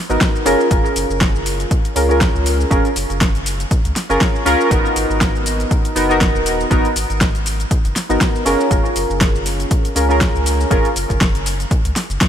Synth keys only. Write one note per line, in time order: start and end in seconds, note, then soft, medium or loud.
0.09 0.43 B3 medium
0.09 0.43 D#4 medium
0.09 0.43 F#4 medium
0.09 0.44 A#4 medium
0.45 0.68 C#4 loud
0.45 0.68 F4 medium
0.45 0.68 G#4 medium
0.45 0.69 A#4 loud
0.70 1.93 C#4 medium
0.70 1.93 F4 medium
0.70 1.94 G#4 medium
0.70 1.94 A#4 medium
1.96 2.07 C#4 medium
1.96 2.07 F4 medium
1.96 2.08 G#4 medium
1.96 2.08 A#4 medium
2.09 2.68 C#4 medium
2.09 2.68 F4 medium
2.09 2.69 G#4 medium
2.09 2.69 A#4 medium
2.71 2.88 C#4 loud
2.71 2.88 F4 medium
2.71 2.88 G#4 medium
2.71 2.89 A#4 loud
4.10 4.43 C#4 medium
4.10 4.43 F4 medium
4.10 4.44 G#4 medium
4.10 4.44 A#4 medium
4.46 4.68 C#4 loud
4.46 4.68 F4 medium
4.46 4.69 G#4 medium
4.46 4.69 A#4 loud
4.70 5.93 B3 medium
4.70 5.93 D#4 medium
4.70 5.94 F#4 medium
4.70 5.94 A#4 medium
5.95 6.07 B3 medium
5.95 6.07 D#4 medium
5.95 6.08 F#4 medium
5.95 6.08 A#4 medium
6.09 6.68 B3 medium
6.09 6.68 D#4 medium
6.09 6.69 F#4 medium
6.09 6.69 A#4 medium
6.70 6.88 B3 loud
6.70 6.88 D#4 medium
6.70 6.88 F#4 medium
6.70 6.89 A#4 loud
8.09 8.43 B3 medium
8.09 8.43 D#4 medium
8.09 8.43 F#4 medium
8.09 8.44 A#4 medium
8.45 8.68 C#4 loud
8.45 8.68 F4 medium
8.45 8.68 G#4 medium
8.45 8.69 A#4 loud
8.70 9.93 C#4 medium
8.70 9.93 F4 medium
8.70 9.94 G#4 medium
8.70 9.94 A#4 medium
9.95 10.07 C#4 medium
9.95 10.07 F4 medium
9.95 10.07 G#4 medium
9.95 10.08 A#4 medium
10.09 10.68 C#4 medium
10.09 10.68 F4 medium
10.09 10.69 G#4 medium
10.09 10.69 A#4 medium
10.71 10.88 C#4 loud
10.71 10.88 F4 medium
10.71 10.88 G#4 medium
10.71 10.89 A#4 loud